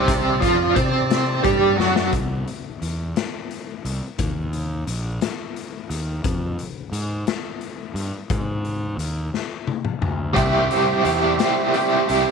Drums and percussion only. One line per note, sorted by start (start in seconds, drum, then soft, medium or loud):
0.08 kick loud
0.08 closed hi-hat loud
0.42 kick loud
0.42 closed hi-hat medium
0.76 kick loud
0.76 closed hi-hat medium
1.10 snare medium
1.10 closed hi-hat medium
1.45 kick loud
1.45 closed hi-hat medium
1.80 snare medium
1.96 snare medium
2.12 kick loud
2.12 closed hi-hat medium
2.47 closed hi-hat soft
2.82 closed hi-hat soft
3.16 snare medium
3.16 closed hi-hat medium
3.51 closed hi-hat soft
3.85 closed hi-hat medium
4.19 kick loud
4.19 closed hi-hat medium
4.53 closed hi-hat soft
4.87 closed hi-hat medium
5.21 snare medium
5.21 closed hi-hat medium
5.56 closed hi-hat medium
5.90 closed hi-hat medium
6.24 kick loud
6.24 closed hi-hat medium
6.59 closed hi-hat soft
6.93 closed hi-hat medium
7.27 snare medium
7.27 closed hi-hat medium
7.61 closed hi-hat medium
7.96 closed hi-hat soft
8.30 kick loud
8.30 closed hi-hat medium
8.65 closed hi-hat soft
8.99 closed hi-hat medium
9.34 snare soft
9.67 high tom medium
9.85 mid tom medium
10.02 mid tom medium
10.36 kick loud
10.36 closed hi-hat medium
10.71 closed hi-hat medium
11.05 closed hi-hat medium
11.39 snare loud
11.39 closed hi-hat medium
11.74 closed hi-hat medium
12.09 closed hi-hat medium